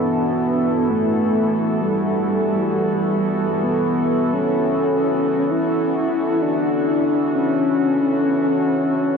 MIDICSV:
0, 0, Header, 1, 3, 480
1, 0, Start_track
1, 0, Tempo, 500000
1, 8803, End_track
2, 0, Start_track
2, 0, Title_t, "Ambient pad"
2, 0, Program_c, 0, 92
2, 0, Note_on_c, 0, 43, 61
2, 0, Note_on_c, 0, 52, 73
2, 0, Note_on_c, 0, 59, 80
2, 0, Note_on_c, 0, 64, 78
2, 0, Note_on_c, 0, 66, 80
2, 0, Note_on_c, 0, 69, 75
2, 4403, Note_off_c, 0, 43, 0
2, 8803, Note_off_c, 0, 52, 0
2, 8803, Note_off_c, 0, 59, 0
2, 8803, Note_off_c, 0, 64, 0
2, 8803, Note_off_c, 0, 66, 0
2, 8803, Note_off_c, 0, 69, 0
2, 8803, End_track
3, 0, Start_track
3, 0, Title_t, "Soft synth lead"
3, 0, Program_c, 1, 80
3, 0, Note_on_c, 1, 59, 98
3, 864, Note_on_c, 1, 57, 89
3, 879, Note_off_c, 1, 59, 0
3, 1737, Note_off_c, 1, 57, 0
3, 1742, Note_on_c, 1, 55, 90
3, 3488, Note_on_c, 1, 59, 90
3, 3503, Note_off_c, 1, 55, 0
3, 4160, Note_on_c, 1, 61, 90
3, 4174, Note_off_c, 1, 59, 0
3, 5289, Note_on_c, 1, 64, 107
3, 5303, Note_off_c, 1, 61, 0
3, 6164, Note_on_c, 1, 62, 104
3, 6179, Note_off_c, 1, 64, 0
3, 7044, Note_off_c, 1, 62, 0
3, 7050, Note_on_c, 1, 61, 95
3, 8777, Note_off_c, 1, 61, 0
3, 8803, End_track
0, 0, End_of_file